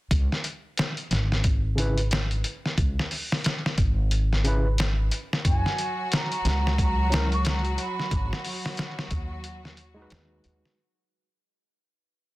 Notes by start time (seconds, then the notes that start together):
0.11 C#2, kick, closed hi-hat
0.32 snare
0.44 closed hi-hat
0.77 snare, closed hi-hat
0.97 closed hi-hat
1.11 G#1, snare, closed hi-hat
1.32 snare
1.44 kick, closed hi-hat
1.75 C#3 C#4 E4, closed hi-hat
1.80 B4
1.98 closed hi-hat
2.11 snare, closed hi-hat
2.31 closed hi-hat
2.44 closed hi-hat
2.66 snare
2.78 C#2, kick, closed hi-hat
2.99 snare
3.11 open hi-hat
3.32 snare
3.44 snare, closed hi-hat
3.66 snare
3.78 G#1, kick, closed hi-hat
4.11 closed hi-hat
4.33 snare
4.44 C#3 C#4 E4 B4, closed hi-hat
4.78 snare, closed hi-hat
5.11 closed hi-hat
5.33 snare
5.45 F#1 F#3 F#4 G#5, kick, closed hi-hat
5.66 snare
5.78 closed hi-hat
6.12 A#5, snare, closed hi-hat
6.32 closed hi-hat
6.45 C#2, snare, closed hi-hat
6.67 snare
6.78 A#5, kick, closed hi-hat
7.10 F#3 C#4 E4 A#4, snare, closed hi-hat
7.32 C#6, closed hi-hat
7.45 A#5, snare, closed hi-hat
7.65 closed hi-hat
7.78 B5, closed hi-hat
8.00 snare
8.11 G#1, kick, closed hi-hat
8.33 snare
8.45 open hi-hat
8.66 snare
8.77 snare, closed hi-hat
8.99 snare
9.11 D#2, kick, closed hi-hat
9.44 closed hi-hat
9.65 snare
9.77 closed hi-hat
9.94 G#3 D#4
9.99 F#4 B4
10.10 D#2, snare, closed hi-hat
10.44 D#2, closed hi-hat
10.65 snare